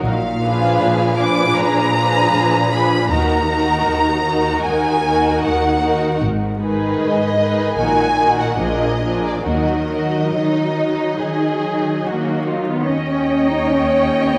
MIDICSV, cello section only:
0, 0, Header, 1, 2, 480
1, 0, Start_track
1, 0, Key_signature, -6, "minor"
1, 0, Tempo, 762389
1, 38, Time_signature, 4, 2, 24, 8
1, 2919, Tempo, 782269
1, 4839, Tempo, 841515
1, 5799, Tempo, 870827
1, 7239, Tempo, 834492
1, 7719, Tempo, 783290
1, 8631, End_track
2, 0, Start_track
2, 0, Title_t, "Cello section"
2, 0, Program_c, 0, 48
2, 30, Note_on_c, 0, 46, 50
2, 449, Note_off_c, 0, 46, 0
2, 507, Note_on_c, 0, 46, 49
2, 934, Note_off_c, 0, 46, 0
2, 986, Note_on_c, 0, 46, 51
2, 1416, Note_off_c, 0, 46, 0
2, 1469, Note_on_c, 0, 46, 48
2, 1900, Note_off_c, 0, 46, 0
2, 1955, Note_on_c, 0, 39, 53
2, 2377, Note_off_c, 0, 39, 0
2, 2436, Note_on_c, 0, 39, 51
2, 2861, Note_off_c, 0, 39, 0
2, 2923, Note_on_c, 0, 39, 48
2, 3347, Note_off_c, 0, 39, 0
2, 3410, Note_on_c, 0, 39, 50
2, 3835, Note_off_c, 0, 39, 0
2, 3895, Note_on_c, 0, 44, 48
2, 4305, Note_off_c, 0, 44, 0
2, 4364, Note_on_c, 0, 44, 49
2, 4784, Note_off_c, 0, 44, 0
2, 4844, Note_on_c, 0, 46, 40
2, 5256, Note_off_c, 0, 46, 0
2, 5311, Note_on_c, 0, 46, 43
2, 5740, Note_off_c, 0, 46, 0
2, 5802, Note_on_c, 0, 51, 40
2, 6228, Note_off_c, 0, 51, 0
2, 6288, Note_on_c, 0, 51, 39
2, 6712, Note_off_c, 0, 51, 0
2, 6776, Note_on_c, 0, 51, 38
2, 7190, Note_off_c, 0, 51, 0
2, 7240, Note_on_c, 0, 58, 45
2, 7241, Note_on_c, 0, 51, 43
2, 7581, Note_off_c, 0, 58, 0
2, 7611, Note_on_c, 0, 59, 44
2, 7666, Note_off_c, 0, 51, 0
2, 7716, Note_on_c, 0, 61, 53
2, 7724, Note_off_c, 0, 59, 0
2, 8081, Note_off_c, 0, 61, 0
2, 8081, Note_on_c, 0, 63, 52
2, 8200, Note_on_c, 0, 61, 50
2, 8203, Note_off_c, 0, 63, 0
2, 8559, Note_off_c, 0, 61, 0
2, 8562, Note_on_c, 0, 59, 54
2, 8631, Note_off_c, 0, 59, 0
2, 8631, End_track
0, 0, End_of_file